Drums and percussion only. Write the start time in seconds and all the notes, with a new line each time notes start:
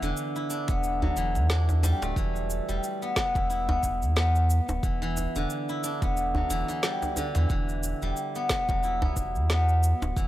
0.03 shaker
0.17 shaker
0.36 shaker
0.50 shaker
0.68 kick, djembe slap, shaker
0.84 shaker
1.02 djembe bass
1.17 shaker
1.35 djembe slap, shaker
1.50 snare, shaker
1.69 djembe tone, shaker
1.83 djembe tone, shaker
2.02 djembe slap, shaker
2.16 kick, shaker
2.36 shaker
2.50 shaker
2.69 shaker
2.84 shaker
3.02 shaker
3.16 kick, snare, shaker
3.35 kick, djembe slap, shaker
3.50 shaker
3.69 djembe slap, djembe bass
3.83 kick, djembe tone, shaker
4.02 shaker
4.16 snare, djembe slap, shaker
4.35 shaker
4.50 shaker
4.69 djembe slap, djembe tone, shaker
4.83 kick, shaker
5.03 shaker
5.17 djembe tone, shaker
5.36 shaker
5.50 shaker
5.69 shaker
5.84 shaker
6.02 kick, djembe slap, shaker
6.17 shaker
6.35 djembe bass
6.50 shaker
6.68 djembe slap, shaker
6.83 snare, shaker
7.02 djembe tone, shaker
7.16 djembe tone, shaker
7.35 djembe slap, shaker
7.50 kick, shaker
7.69 shaker
7.83 shaker
8.02 shaker
8.17 shaker
8.35 shaker
8.49 kick, snare, shaker
8.69 kick, djembe slap, shaker
8.83 shaker
9.02 djembe slap, djembe bass
9.17 kick, djembe tone, shaker
9.35 shaker
9.50 snare, djembe slap, shaker
9.69 shaker
9.83 shaker
10.02 djembe slap, djembe tone, shaker
10.17 kick, shaker